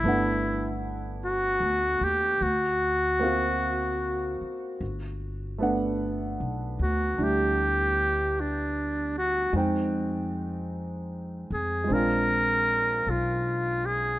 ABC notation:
X:1
M:4/4
L:1/8
Q:"Swing" 1/4=51
K:G
V:1 name="Muted trumpet"
E z F G F3 z | z3 F G2 D F | z3 _A _B2 =F A |]
V:2 name="Grand piano"
[A,B,Df]4 z [^A,CF^e]3 | z [A,B,Df]3 [G,DE]4 | [_A,C_Eg]4 [A,CD=F]4 |]
V:3 name="Upright bass" clef=bass
G,,,2- (3G,,, D,, _E,, D,,3 z | G,,,2- (3G,,, B,,, D,, D,,4 | =F,,3 F,, _B,,,2 =B,,,2 |]